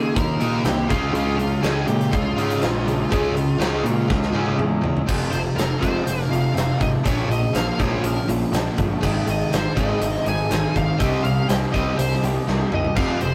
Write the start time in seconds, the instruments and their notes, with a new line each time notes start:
Already playing: picked electric bass C#3, overdriven electric guitar D#3 A#3, steel-string acoustic guitar D#3 F3 A#3, lead electric guitar G#4 G#5
0.15 picked electric bass D#2, overdriven electric guitar D#3 A#3, steel-string acoustic guitar F3, lead electric guitar A#4 A#5, kick, closed hi-hat
0.41 picked electric bass A#2, overdriven electric guitar D#3 A#3 D#4, steel-string acoustic guitar D#4, closed hi-hat
0.64 picked electric bass C2, overdriven electric guitar D#3 A#3, lead electric guitar G4 G5, steel-string acoustic guitar G4, snare, closed hi-hat
0.88 picked electric bass C#2, overdriven electric guitar C#3 G#3 C#4, steel-string acoustic guitar C#3, lead electric guitar F4 F5, kick, closed hi-hat
1.13 picked electric bass C#2, overdriven electric guitar C#3 G#3 C#4, steel-string acoustic guitar C#3, lead electric guitar F4 F5, closed hi-hat
1.39 overdriven electric guitar C#3 G#3, steel-string acoustic guitar G#3, closed hi-hat
1.63 picked electric bass C#2, overdriven electric guitar C#3 G#3 C#4, steel-string acoustic guitar F4, lead electric guitar G#4 G#5, snare, closed hi-hat
1.86 picked electric bass A#2, overdriven electric guitar C#3 G#3, steel-string acoustic guitar G#3, lead electric guitar G4 G5, closed hi-hat
2.01 snare, closed hi-hat
2.11 picked electric bass C#2, overdriven electric guitar C#3 G#3, steel-string acoustic guitar F3, lead electric guitar F4 F5, kick, closed hi-hat
2.36 picked electric bass G#2, overdriven electric guitar C#3 G#3 C#4, steel-string acoustic guitar C#4, closed hi-hat
2.50 closed hi-hat
2.60 picked electric bass A#1, overdriven electric guitar C#3 G#3, steel-string acoustic guitar F4, snare, closed hi-hat
2.85 overdriven electric guitar C#3 G#3, steel-string acoustic guitar G#3, closed hi-hat
3.09 picked electric bass C#2, overdriven electric guitar C#3 G#3 C#4, steel-string acoustic guitar C#3, kick, closed hi-hat
3.34 overdriven electric guitar C#3 G#3, steel-string acoustic guitar G#3, closed hi-hat
3.58 picked electric bass C#2, overdriven electric guitar C#3 G#3 C#4, steel-string acoustic guitar F4, snare, closed hi-hat
3.84 picked electric bass A#2, overdriven electric guitar C#3 G#3, steel-string acoustic guitar G#3, closed hi-hat
4.08 picked electric bass C#2, overdriven electric guitar C#3 G#3, kick, snare
4.23 snare
4.32 picked electric bass G#2, overdriven electric guitar C#3 G#3 C#4, steel-string acoustic guitar C#4
4.46 high tom
4.57 picked electric bass E2, overdriven electric guitar C#3 G#3, steel-string acoustic guitar F4, mid tom
4.81 overdriven electric guitar C#3 G#3, steel-string acoustic guitar G#3, floor tom
4.97 floor tom
5.06 picked electric bass F1, overdriven electric guitar F2 C3 F3, steel-string acoustic guitar F2, kick, crash
5.31 picked electric bass F1, overdriven electric guitar F2 C3, steel-string acoustic guitar C3, lead electric guitar C5, closed hi-hat
5.55 picked electric bass F1, overdriven electric guitar F2 C3, steel-string acoustic guitar F3, lead electric guitar A#4, closed hi-hat
5.59 snare
5.80 picked electric bass F1, overdriven electric guitar F2 C3 F3, steel-string acoustic guitar G#3, lead electric guitar C5, kick, closed hi-hat
6.05 picked electric bass F1, overdriven electric guitar F2 C3, steel-string acoustic guitar C4, closed hi-hat
6.21 snare
6.30 picked electric bass F1, overdriven electric guitar F2 C3, steel-string acoustic guitar F4, lead electric guitar F5, closed hi-hat
6.54 picked electric bass F1, overdriven electric guitar F2 C3, steel-string acoustic guitar C4, snare, closed hi-hat
6.80 picked electric bass G#1, overdriven electric guitar F2 C3, steel-string acoustic guitar G#3, lead electric guitar D#5, kick, closed hi-hat
7.04 picked electric bass A#1, overdriven electric guitar A#2 F3 A#3, steel-string acoustic guitar A#2, lead electric guitar C#5, kick, closed hi-hat
7.28 picked electric bass A#1, overdriven electric guitar A#2 F3, steel-string acoustic guitar F3, lead electric guitar D#5, closed hi-hat
7.53 picked electric bass A#1, overdriven electric guitar A#2 F3, steel-string acoustic guitar F3, lead electric guitar F5, snare, closed hi-hat
7.78 picked electric bass A#1, overdriven electric guitar A#2 F3 A#3, steel-string acoustic guitar G#3, lead electric guitar C#5, kick, closed hi-hat
8.03 picked electric bass A#1, overdriven electric guitar A#2 F3, steel-string acoustic guitar C#4, lead electric guitar A#4, closed hi-hat
8.28 picked electric bass A#1, overdriven electric guitar A#2 F3, steel-string acoustic guitar F4, closed hi-hat
8.52 picked electric bass A#1, overdriven electric guitar A#2 F3, steel-string acoustic guitar C#4, snare, closed hi-hat
8.77 picked electric bass G1, overdriven electric guitar A#2 F3, steel-string acoustic guitar G#3, kick, closed hi-hat
9.00 picked electric bass G#1, overdriven electric guitar G#2 D#3 G#3, steel-string acoustic guitar G#2, kick, crash
9.27 picked electric bass G#1, overdriven electric guitar G#2 D#3, steel-string acoustic guitar D#3, lead electric guitar D#5, closed hi-hat
9.51 picked electric bass G#1, overdriven electric guitar G#2 D#3, steel-string acoustic guitar G#3, snare, closed hi-hat
9.55 lead electric guitar C5
9.75 picked electric bass G#1, overdriven electric guitar G#2 D#3 G#3, steel-string acoustic guitar C4, kick, closed hi-hat
9.79 lead electric guitar D#5
10.00 picked electric bass G#1, overdriven electric guitar G#2 D#3, steel-string acoustic guitar D#4, closed hi-hat
10.15 snare
10.25 picked electric bass G#1, overdriven electric guitar G#2 D#3, steel-string acoustic guitar G#4, lead electric guitar G#5, closed hi-hat
10.49 picked electric bass G#1, overdriven electric guitar G#2 D#3, steel-string acoustic guitar D#4, snare, closed hi-hat
10.74 picked electric bass G#1, overdriven electric guitar G#2 D#3, steel-string acoustic guitar C4, lead electric guitar F5, kick, closed hi-hat
10.98 picked electric bass C2, overdriven electric guitar C3 G3 C4, steel-string acoustic guitar C3, lead electric guitar D#5, kick, closed hi-hat
11.24 picked electric bass C2, overdriven electric guitar C3 G3, steel-string acoustic guitar G3, lead electric guitar F5, closed hi-hat
11.48 picked electric bass C2, overdriven electric guitar C3 G3, steel-string acoustic guitar G3, lead electric guitar G5, snare, closed hi-hat
11.73 picked electric bass C2, overdriven electric guitar C3 G3 C4, steel-string acoustic guitar C4, lead electric guitar D#5, kick, closed hi-hat
11.97 picked electric bass C2, overdriven electric guitar C3 G3, steel-string acoustic guitar D#4, lead electric guitar C5, closed hi-hat
12.12 snare
12.22 picked electric bass C2, overdriven electric guitar C3 G3, steel-string acoustic guitar G4, closed hi-hat
12.47 picked electric bass C2, overdriven electric guitar C3 G3, steel-string acoustic guitar D#4, snare
12.72 picked electric bass C2, overdriven electric guitar C3 G3, steel-string acoustic guitar C4, lead electric guitar D#5, mid tom
12.85 floor tom
12.95 picked electric bass F1, overdriven electric guitar F2 C3 F3, lead electric guitar F5, kick, crash
13.20 picked electric bass F1, overdriven electric guitar F2 C3, lead electric guitar C5, closed hi-hat